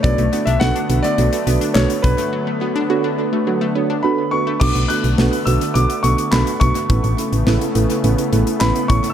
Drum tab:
CC |----------------|----------------|x---------------|----------------|
HH |xxxx-xxxxxxx-xxx|----------------|-xxx-xxxxxxx-xxx|xxxx-xxxxxxx-xxx|
CP |------------x---|----------------|------------x---|------------x---|
SD |----o-------o---|----------------|----o-------o---|----o-------o---|
BD |o-------------o-|----------------|o-------------o-|o-------------o-|